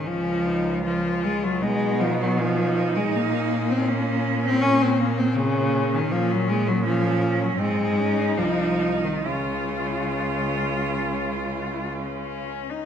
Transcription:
<<
  \new Staff \with { instrumentName = "Cello" } { \time 4/4 \key des \major \tempo 4 = 78 des'8 ees'8 f'4 ees'4 des'4 | des'1 | des'4 des'4 ees'2 | f'2. des'8. ees'16 | }
  \new Staff \with { instrumentName = "Cello" } { \time 4/4 \key des \major r2 ces'4 ees'4~ | ees'4 des'4 bes4 bes4~ | bes4 des'4 c'8 des'8 ees'4 | f'2.~ f'8 r8 | }
  \new Staff \with { instrumentName = "Cello" } { \clef bass \time 4/4 \key des \major f4 f8 aes16 ges16 aes8 f16 ges16 f8. aes16 | bes8. c'16 bes8. c'16 des'16 c'16 bes16 c'16 des8. ees16 | f16 ges16 aes16 ges16 f8. ges16 aes4 f8. ees16 | des2.~ des8 r8 | }
  \new Staff \with { instrumentName = "Cello" } { \clef bass \time 4/4 \key des \major des,2 ces2 | bes,1 | bes,2 aes,4 c,4 | des,2.~ des,8. r16 | }
>>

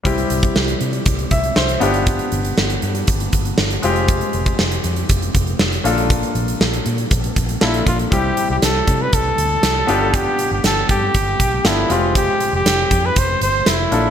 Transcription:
<<
  \new Staff \with { instrumentName = "Flugelhorn" } { \time 4/4 \key c \major \tempo 4 = 119 r1 | r1 | r1 | r2. e'8 f'8 |
g'8. g'16 a'8. b'16 a'2 | g'8. g'16 a'8 g'4. e'8 f'8 | g'8. g'4 b'16 c''8 c''8 e'4 | }
  \new Staff \with { instrumentName = "Grand piano" } { \time 4/4 \key c \major << { r2 r8 e''8 c''4 | r1 | r1 | r1 |
r1 | r1 | r1 | } \\ { <g c' e' g'>2.~ <g c' e' g'>8 <b d' f' g'>8~ | <b d' f' g'>2.~ <b d' f' g'>8 <aes c' f' g'>8~ | <aes c' f' g'>2.~ <aes c' f' g'>8 <bes d' f' a'>8~ | <bes d' f' a'>2. <bes d' f' a'>4 |
<g c' e' g'>2.~ <g c' e' g'>8 <b d' f' g'>8~ | <b d' f' g'>2. <b d' f' a'>8 <aes c' f' g'>8~ | <aes c' f' g'>2.~ <aes c' f' g'>8 <bes d' f' a'>8 | } >> }
  \new Staff \with { instrumentName = "Fingered electric bass" } { \clef bass \time 4/4 \key c \major c,8 c,8 c,8 c8 c,8 c,8 c,8 g,,8~ | g,,8 g,,8 g,,8 g,8 g,,8 g,,8 g,,8 f,,8~ | f,,8 f,,8 f,,8 f,8 f,,8 f,,8 f,,8 bes,,8~ | bes,,8 bes,,8 bes,,8 bes,8 bes,,8 bes,,8 bes,,8 bes,,8 |
c,8 r16 c,16 c,8 c8 c,8 d,8 c,8 g,,8~ | g,,8 r16 g,,16 g,,8 g,8 g,,8 b,,8 g,,8 f,,8~ | f,,8 r16 f,,16 f,,8 f,8 f,,8 g,,8 f,,8 bes,,8 | }
  \new DrumStaff \with { instrumentName = "Drums" } \drummode { \time 4/4 <hh bd>16 hh16 hh16 <hh bd>16 sn16 hh16 hh16 hh16 <hh bd>16 hh16 <hh bd>16 hh16 sn16 hh16 hh16 hh16 | <hh bd>16 hh16 hh16 hh16 sn16 hh16 hh16 hh16 <hh bd>16 hh16 <hh bd>16 hh16 sn16 hh16 hh16 hh16 | <hh bd>16 hh16 hh16 <hh bd>16 sn16 hh16 hh16 hh16 <hh bd>16 hh16 <hh bd>16 hh16 sn16 hh16 hh16 hh16 | <hh bd>16 hh16 hh16 hh16 sn16 hh16 hh16 hh16 <hh bd>16 hh16 <hh bd>16 hh16 sn16 hh16 <hh bd>16 hh16 |
<hh bd>8 hh8 <hh sn>8 <hh bd>8 <hh bd>8 hh8 <hh sn>8 hh8 | <hh bd>8 hh8 <hh sn>8 <hh bd>8 <hh bd>8 <hh bd>8 <hh sn>8 hh8 | <hh bd>8 hh8 <hh sn>8 <hh bd>8 <hh bd>8 hh8 <hh sn>8 hh8 | }
>>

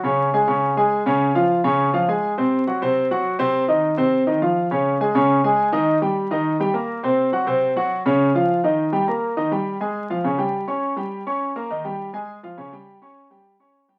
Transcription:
\new Staff \with { instrumentName = "Grand piano" } { \time 4/4 \key des \lydian \tempo 4 = 206 <des des' des''>4 <aes aes' aes''>8 <des des' des''>4 <aes aes' aes''>4 <des des' des''>8~ | <des des' des''>8 <f f' f''>4 <des des' des''>4 <f f' f''>8 <aes aes' aes''>4 | <c c' c''>4 <ges ges' ges''>8 <c c' c''>4 <ges ges' ges''>4 <c c' c''>8~ | <c c' c''>8 <ees ees' ees''>4 <c c' c''>4 <ees ees' ees''>8 <f f' f''>4 |
<des des' des''>4 <aes aes' aes''>8 <des des' des''>4 <aes aes' aes''>4 <ees ees' ees''>8~ | <ees ees' ees''>8 <g g' g''>4 <ees ees' ees''>4 <g g' g''>8 <bes bes' bes''>4 | <c c' c''>4 <ges ges' ges''>8 <c c' c''>4 <ges ges' ges''>4 <des des' des''>8~ | <des des' des''>8 <f f' f''>4 <ees ees' ees''>4 <g g' g''>8 <bes bes' bes''>4 |
<ees ees' ees''>8 <g g' g''>4 <aes aes' aes''>4 <f f' f''>8 <des des' des''>8 <g g' g''>8~ | <g g' g''>8 <des' des'' des'''>4 <g g' g''>4 <des' des'' des'''>4 <bes bes' bes''>8 | <ees ees' ees''>8 <g g' g''>4 <aes aes' aes''>4 <f f' f''>8 <des des' des''>8 <g g' g''>8~ | <g g' g''>8 <des' des'' des'''>4 <g g' g''>4 <des' des'' des'''>4 <g g' g''>8 | }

